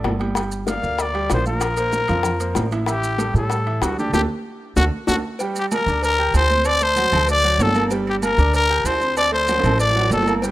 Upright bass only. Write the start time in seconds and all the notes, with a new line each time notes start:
0.04 G1
0.83 D2
1.30 A#1
2.09 F2
2.56 A1
3.34 A2
3.82 D2
4.13 D2
4.77 D2
5.08 D2
5.86 D2
6.34 D2
7.12 D2
7.58 G1
8.38 D2
8.84 D2
9.64 A1
10.10 G1